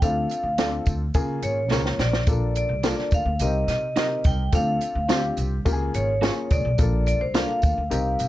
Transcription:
0.02 upright bass D2, upright piano C4 D4 E4 A4, vibraphone F5, kick, closed hi-hat, tambourine
0.09 upright piano F4
0.29 closed hi-hat, tambourine
0.43 upright bass D2
0.58 clean electric guitar C4 F4 A4 D5, upright piano C4 D4 F4 A4, snare, closed hi-hat, tambourine
0.86 upright bass D2, kick, closed hi-hat, tambourine
1.14 upright bass C#3, upright piano A#3 C#4 F4 G#4, kick, closed hi-hat, tambourine
1.42 upright bass G#1, vibraphone C#5, closed hi-hat, tambourine
1.70 upright bass C#2, clean electric guitar A#3 F4 G#4 C#5, upright piano A#3 C#4 F4 A#4, snare, tambourine
1.85 snare
1.99 upright bass A#1, vibraphone D5, snare, tambourine
2.13 snare
2.27 upright bass A#1, upright piano A#3 D4 F4 A4, kick, closed hi-hat, tambourine
2.55 vibraphone D5, closed hi-hat, tambourine
2.69 upright bass C2
2.83 clean electric guitar A#3 F4 A4 D5, upright piano A#3 D4 F4 A4, snare, closed hi-hat, tambourine
2.99 snare
3.11 upright bass D2, vibraphone F5, kick, closed hi-hat, tambourine
3.25 upright bass D2
3.39 upright bass C2, upright piano C4 D#4 G4 A#4, vibraphone D#5, closed hi-hat, tambourine
3.68 upright bass C3, vibraphone D#5, snare, closed hi-hat, tambourine
3.96 upright piano C4 D#4 G4 A#4, clean electric guitar D#4 G4 A#4 D#5, snare, closed hi-hat, tambourine
4.24 upright bass C2, vibraphone G5, kick, closed hi-hat, tambourine
4.52 upright bass D2, upright piano C4 D4 F4 A4, vibraphone F5, kick, closed hi-hat, tambourine
4.81 closed hi-hat, tambourine
4.95 upright bass D2
5.08 upright piano C4 D4 F4 F#4, clean electric guitar C4 F4 A4 D5, snare, closed hi-hat, tambourine
5.15 upright piano G4
5.37 upright bass C2, closed hi-hat, tambourine
5.65 upright bass C#2, upright piano A#3 C#4 F4 G4, kick, closed hi-hat, tambourine
5.73 upright piano G#4
5.94 upright bass G#1, vibraphone C#5, closed hi-hat, tambourine
6.21 clean electric guitar A#3 F4 G#4 C#5, upright piano A#3 C#4 E4 G#4, snare, closed hi-hat, tambourine
6.28 upright piano F4
6.50 upright bass C#2, vibraphone D5, kick, closed hi-hat, tambourine
6.65 upright bass B1
6.78 upright bass A#1, upright piano A#3 D4 F4 A4, kick, closed hi-hat, tambourine
7.06 vibraphone D5, closed hi-hat, tambourine
7.21 upright bass C2, vibraphone C5
7.34 upright piano A#3 D4 F4 A4, clean electric guitar D4 F4 A4 D5, vibraphone F5, snare, closed hi-hat, tambourine
7.62 upright bass D2, kick, closed hi-hat, tambourine
7.78 upright bass D2
7.90 upright bass C2, upright piano C4 D#4 G4 A#4, closed hi-hat, tambourine
8.19 upright bass C3, closed hi-hat, tambourine

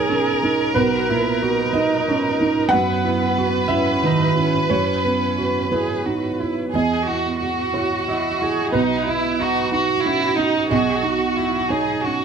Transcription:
Already playing: felt piano B1 D#4 F#4 C#5 D#5, cello G#4, violin section A#4
0.10 felt piano C#4
0.43 felt piano D#4
0.75 felt piano B1 B4, cello F#4
1.09 felt piano A#2, cello E4
1.42 cello D#4, felt piano F#4
1.73 felt piano D#4 D#5
2.08 felt piano C#4
2.41 felt piano D#4
2.69 violin section B4, felt piano F#5
2.73 felt piano F#2, cello B3
3.05 felt piano E4
3.38 felt piano F#4
3.68 cello C#4, felt piano E4 E5
4.03 felt piano D#3, cello D#4
4.36 cello C#4, felt piano E4
4.70 felt piano F#2 C#5, cello C#4
5.05 felt piano B3
5.38 felt piano F#4
5.72 felt piano E4 B4, cello G#4
6.05 felt piano D#4, cello F#4
6.40 felt piano E4, cello E4
6.73 felt piano E2 D#5, cello B3, violin section G#4
7.06 felt piano E4, violin section F#4
7.40 violin section F#4, felt piano F#4
7.74 felt piano E4 C#5, cello F#4
8.09 cello E4, felt piano D#5
8.42 felt piano E4, cello G#4
8.72 felt piano B1 B4, violin section D#4, cello F#4
9.07 violin section E4, cello E4, felt piano D#5
9.40 cello D#4, felt piano F#4, violin section F#4
9.72 felt piano D#4, violin section F#4, cello F#4
10.05 felt piano C#4, violin section E4
10.37 violin section D#4, felt piano D#4
10.69 felt piano B1 D#5, violin section F#4, cello G#4
11.03 felt piano D#4, cello F#4
11.36 cello E4, felt piano F#4
11.70 cello D#4, felt piano D#4 C#5, violin section G#4
12.04 felt piano C#4, cello F#4, violin section F#4

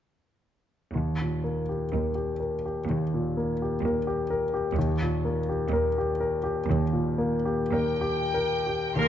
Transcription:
0.95 cello section D#2, grand piano D#2
1.22 grand piano A#2
1.44 grand piano A#3
1.69 grand piano G4
1.92 cello section D#2, grand piano A#4
2.15 grand piano G4
2.40 grand piano A#4
2.66 grand piano G4
2.89 cello section D#2, grand piano D#2
3.14 grand piano A#2
3.37 grand piano A#3
3.62 grand piano G4
3.83 cello section D#2, grand piano A#4
4.07 grand piano G4
4.30 grand piano A#4
4.54 grand piano G4
4.75 cello section D#2, grand piano D#2
5.02 grand piano A#2
5.25 grand piano A#3
5.49 grand piano G4
5.71 cello section D#2, grand piano A#4
5.98 grand piano G4
6.21 grand piano A#4
6.44 grand piano G4
6.69 cello section D#2, grand piano D#2
6.93 grand piano A#2
7.18 grand piano A#3
7.45 grand piano G4
7.72 cello section D#2, grand piano A#4, violin section G5
8.01 grand piano G4
8.34 grand piano A#4
8.67 grand piano G4
8.96 grand piano D#2, cello section D#3, viola section A#3 A#4, violin section C6

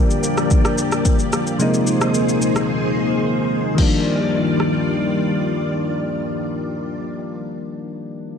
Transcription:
Already playing: synth keys D3 F3 G3 A#3 D4, string machine F3 A#3 G4 D5
0.11 shaker
0.23 shaker
0.38 cross-stick, shaker
0.51 kick, shaker
0.65 cross-stick, shaker
0.78 shaker
0.92 cross-stick, shaker
1.05 kick, shaker
1.19 shaker
1.33 cross-stick, shaker
1.47 shaker
1.58 synth keys C3 F3 G#3 A#3 D#4, string machine D#3 A#3 G#4 C5, shaker
1.74 shaker
1.87 shaker
2.01 cross-stick, shaker
2.14 shaker
2.29 shaker
2.42 shaker
2.56 cross-stick, shaker
3.75 synth keys D#3 F3 G3, string machine D#3 G3 F4 D5, kick, crash
3.80 synth keys A#3 D4
4.60 cross-stick

